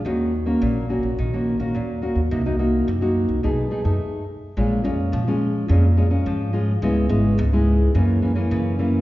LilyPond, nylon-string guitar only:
\new Staff \with { instrumentName = "Nylon-string guitar" } { \time 4/4 \key bes \minor \tempo 4 = 106 << { <bes des' ges'>8 r16 <bes des' ges'>8. <bes des' ges'>8 r16 <bes des' ges'>8 <bes des' ges'>8. <bes des' ges'>16 r16 | <bes ees' ges'>16 <bes ees' ges'>16 <bes ees' ges'>8 r16 <bes ees' ges'>8. <a dis' gis'>8 <a dis' gis'>16 <a dis' gis'>8. r8 | <aes des' f'>8 <aes des' f'>8. <aes des' f'>8. <aes des' f'>16 r16 <aes des' f'>16 <aes des' f'>8. <aes des' f'>16 r16 | <aes ces' fes'>8 <aes ces' fes'>8 r16 <aes ces' fes'>8. <fes bes des'>8 <fes bes des'>16 <fes bes des'>8. <fes bes des'>8 | } \\ { ees4 bes,4 ees4 bes,4 | c4 c4 b,4 r4 | bes,4 f4 bes,4 f4 | des4 aes,4 ges,4 des4 | } >> }